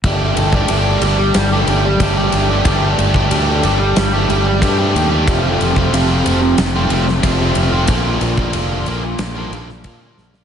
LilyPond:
<<
  \new Staff \with { instrumentName = "Overdriven electric guitar" } { \time 4/4 \key g \minor \tempo 4 = 92 <g a d' g'>8. <a d' g'>16 <g a d' g'>8 <g a d' g'>8. <a d' g'>16 <g a d' g'>8 <g a d' g'>16 <a d' g'>8 <a d' g'>16 | <g a d' g'>8. <a d' g'>16 <g a d' g'>8 <g a d' g'>8. <a d' g'>16 <g a d' g'>8 <g a d' g'>16 <a d' g'>8 <a d' g'>16 | <f, c f a c' f'>8. <f a c' f'>16 <f, c f a c' f'>8 <f a c' f'>8. <f a c' f'>16 <f a c' f'>8 <f, c f a c' f'>16 <f a c' f'>8 <f a c' f'>16 | <bes, d bes d' f'>8. <bes d' f'>16 <bes, d bes d' f'>8 <d bes d' f'>8. <bes d' f'>16 <d bes d' f'>8 <bes, d bes d' f'>16 <bes d' f'>8 <bes d' f'>16 | }
  \new Staff \with { instrumentName = "Fingered electric bass" } { \clef bass \time 4/4 \key g \minor g,,8 g,,8 g,,8 g,,8 g,,8 g,,8 g,,8 g,,8 | g,,8 g,,8 d,8 g,,8 g,,8 g,,8 g,8 ees,8 | f,,8 f,,8 f,,8 f,,8 f,,8 f,,8 f,,8 f,,8 | bes,,8 bes,,8 f,,8 bes,,8 bes,,8 bes,,8 bes,8 bes,,8 | }
  \new DrumStaff \with { instrumentName = "Drums" } \drummode { \time 4/4 <bd cymr>8 cymr16 bd16 cymr8 cymr8 <cymr sn>8 cymr8 <bd cymr>8 cymr8 | <bd cymr>8 cymr16 bd16 cymr8 cymr8 <cymr sn>8 cymr8 <bd cymr>8 cymr8 | <bd cymr>8 cymr16 bd16 cymr8 cymr8 <cymr sn>8 cymr16 sn16 <bd cymr>8 cymr8 | <bd cymr>8 cymr16 bd16 cymr8 cymr8 <cymr sn>8 cymr16 sn16 <bd cymr>8 sn16 sn16 | }
>>